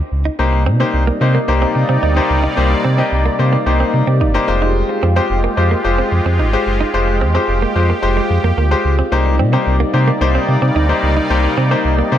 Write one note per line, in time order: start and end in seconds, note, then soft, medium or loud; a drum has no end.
0.12 0.30 C#2 medium
0.25 0.34 D#4 medium
0.39 0.68 C2 loud
0.39 4.44 C3 medium
0.39 4.44 G3 medium
0.39 0.61 A#3 medium
0.39 4.44 A#3 medium
0.39 0.61 D#4 medium
0.39 4.44 D#4 medium
0.39 0.61 G4 medium
0.39 0.61 C5 medium
0.39 4.44 D5 medium
0.53 muted clean electric guitar stroke soft
0.66 0.84 C3 medium
0.66 0.75 C4 medium
0.80 1.02 A#3 medium
0.80 0.89 C4 medium
0.80 1.02 D#4 medium
0.80 1.02 G4 medium
0.80 1.02 C5 medium
0.94 1.11 C2 loud
1.07 1.16 A#3 medium
1.21 1.39 C3 loud
1.21 1.36 A#3 medium
1.21 1.36 D#4 medium
1.21 1.36 G4 medium
1.21 1.36 C5 medium
1.21 muted clean electric guitar stroke soft
1.35 1.44 A#3 medium
1.48 1.66 C2 medium
1.48 1.85 A#3 medium
1.48 1.85 D#4 medium
1.48 1.85 G4 medium
1.48 1.85 C5 medium
1.62 1.71 C4 medium
1.75 1.84 C3 loud
1.75 muted clean electric guitar stroke soft
1.89 1.98 C3 loud
1.89 1.98 C4 medium
2.03 2.21 D2 medium
2.03 2.12 D#4 medium
2.16 2.38 A#3 medium
2.16 2.38 D#4 medium
2.16 2.38 G4 medium
2.16 2.39 C5 medium
2.16 muted clean electric guitar stroke soft
2.30 2.48 C#2 medium
2.44 2.53 D#4 medium
2.57 2.75 C2 loud
2.57 2.79 A#3 medium
2.57 2.79 D#4 medium
2.57 2.79 G4 medium
2.57 2.79 C5 medium
2.71 muted clean electric guitar stroke soft
2.85 3.02 C3 loud
2.85 2.94 C4 medium
2.98 3.20 A#3 medium
2.98 3.07 C4 medium
2.98 3.20 D#4 medium
2.98 3.20 G4 medium
2.98 3.20 D#5 medium
3.12 3.30 C2 loud
3.26 3.35 A#3 medium
3.39 3.57 C3 loud
3.39 3.54 A#3 medium
3.39 3.54 D#4 medium
3.39 3.54 G4 medium
3.39 3.54 C5 medium
3.39 muted clean electric guitar stroke soft
3.53 3.62 A#3 medium
3.66 3.84 C2 loud
3.66 4.03 A#3 medium
3.66 4.03 D#4 medium
3.66 4.03 G4 medium
3.66 4.03 C5 medium
3.80 3.89 C4 medium
3.94 4.03 C3 loud
3.94 muted clean electric guitar stroke soft
4.07 4.22 C3 loud
4.07 4.16 C4 medium
4.21 4.39 F#1 loud
4.21 4.30 D#4 medium
4.34 4.48 A#3 medium
4.34 4.48 D#4 medium
4.34 4.46 G4 medium
4.34 4.47 C5 medium
4.34 muted clean electric guitar stroke soft
4.48 4.84 F1 loud
4.48 5.02 G#3 medium
4.48 9.08 G#3 medium
4.48 5.03 F4 medium
4.48 9.08 F4 medium
4.48 5.03 G4 medium
4.48 6.64 G4 medium
4.48 5.03 C5 loud
4.62 4.71 D#4 medium
4.89 muted clean electric guitar stroke soft
5.03 5.21 F2 loud
5.03 5.12 C4 medium
5.16 5.38 G#3 medium
5.16 5.25 C4 medium
5.16 5.38 F4 medium
5.16 5.38 G4 medium
5.16 5.38 C5 loud
5.30 5.48 F1 loud
5.44 5.53 A#3 medium
5.57 5.75 F2 loud
5.57 5.72 G#3 medium
5.57 5.72 F4 medium
5.57 5.72 G4 medium
5.57 5.72 C5 medium
5.57 muted clean electric guitar stroke soft
5.71 5.80 A#3 medium
5.84 6.02 F1 loud
5.84 6.21 G#3 medium
5.84 6.21 F4 medium
5.84 6.21 G4 medium
5.84 6.21 C5 medium
5.98 6.07 C4 medium
6.12 6.21 F2 loud
6.12 muted clean electric guitar stroke soft
6.25 6.41 F2 loud
6.25 6.35 C4 medium
6.39 6.57 G1 loud
6.39 6.48 D#4 medium
6.53 6.75 G#3 medium
6.53 6.75 F4 medium
6.53 6.75 G4 medium
6.53 6.75 C5 medium
6.53 muted clean electric guitar stroke soft
6.66 6.84 F#1 medium
6.66 9.09 G4 loud
6.81 6.89 D#4 medium
6.94 7.22 F1 loud
6.94 7.16 G#3 medium
6.94 7.16 F4 medium
6.94 7.16 G4 medium
6.94 7.16 C5 medium
7.08 muted clean electric guitar stroke soft
7.21 7.39 F2 loud
7.21 7.30 C4 medium
7.34 7.56 G#3 medium
7.34 7.44 C4 medium
7.34 7.57 F4 medium
7.34 7.57 G4 medium
7.34 7.57 C5 medium
7.48 7.66 F1 loud
7.62 7.71 A#3 medium
7.75 7.93 F2 loud
7.75 7.90 G#3 medium
7.75 7.90 F4 medium
7.75 7.90 G4 medium
7.75 7.90 C5 medium
7.75 muted clean electric guitar stroke soft
7.90 7.99 A#3 medium
8.02 8.21 F1 loud
8.02 8.39 G#3 medium
8.02 8.39 F4 medium
8.02 8.39 G4 medium
8.02 8.39 C5 loud
8.17 8.26 G#3 medium
8.30 8.39 F2 loud
8.30 muted clean electric guitar stroke soft
8.44 8.53 F2 loud
8.44 8.53 A#3 medium
8.57 8.75 D2 medium
8.57 8.67 A#3 medium
8.71 8.93 G#3 medium
8.71 8.93 F4 medium
8.71 8.93 G4 medium
8.71 8.93 C5 loud
8.71 muted clean electric guitar stroke soft
8.85 9.02 C#2 medium
8.99 9.08 C4 medium
9.12 9.41 C2 loud
9.12 12.18 C3 medium
9.12 12.18 G3 medium
9.12 9.34 A#3 medium
9.12 12.18 A#3 medium
9.12 9.34 D#4 medium
9.12 12.18 D#4 medium
9.12 9.34 G4 medium
9.12 9.34 C5 loud
9.12 12.18 D5 medium
9.26 muted clean electric guitar stroke soft
9.39 9.57 C3 medium
9.39 9.48 C4 medium
9.53 9.75 A#3 medium
9.53 9.62 C4 medium
9.53 9.75 D#4 medium
9.53 9.75 G4 medium
9.53 9.75 C5 medium
9.67 9.84 C2 medium
9.80 9.89 A#3 medium
9.93 10.11 C3 loud
9.93 10.08 A#3 medium
9.93 10.08 D#4 medium
9.93 10.08 G4 medium
9.93 10.08 C5 medium
9.93 muted clean electric guitar stroke soft
10.08 10.16 A#3 medium
10.21 10.39 C2 loud
10.21 10.58 A#3 medium
10.21 10.58 D#4 medium
10.21 10.58 G4 medium
10.21 10.58 C5 loud
10.35 10.44 C4 medium
10.48 10.57 C3 loud
10.48 muted clean electric guitar stroke soft
10.62 10.71 C3 loud
10.62 10.71 C4 medium
10.76 10.93 D2 medium
10.76 10.85 D#4 medium
10.89 11.11 A#3 medium
10.89 11.11 D#4 medium
10.89 11.11 G4 medium
10.89 11.11 C5 medium
10.89 muted clean electric guitar stroke soft
11.03 11.21 C#2 medium
11.17 11.26 D#4 medium
11.30 11.48 C2 loud
11.30 11.52 A#3 medium
11.30 11.52 D#4 medium
11.30 11.52 G4 medium
11.30 11.52 C5 medium
11.44 muted clean electric guitar stroke soft
11.57 11.75 C3 loud
11.57 11.66 C4 medium
11.71 11.93 A#3 medium
11.71 11.80 C4 medium
11.71 11.93 D#4 medium
11.71 11.93 G4 medium
11.71 11.93 C5 medium
11.85 12.02 C2 loud
11.99 12.07 A#3 medium
12.11 12.18 C3 loud
12.11 12.18 A#3 medium
12.11 12.18 D#4 medium
12.11 12.18 G4 medium
12.11 12.18 C5 medium
12.11 muted clean electric guitar stroke soft